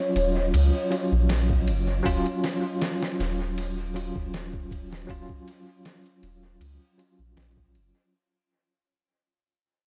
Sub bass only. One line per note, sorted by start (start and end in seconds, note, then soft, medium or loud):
0.15 0.53 D#1 medium
0.54 0.71 C#2 medium
1.12 1.69 A#1 medium
1.67 2.01 F#1 medium
2.05 2.23 D#1 medium
3.19 4.11 D#1 medium
4.16 5.05 D#1 medium
5.09 5.27 D#1 medium
6.22 6.60 D#1 medium
6.60 6.78 C#2 medium
7.19 7.36 A#1 medium
7.36 7.76 A#1 medium
7.75 7.92 F#1 medium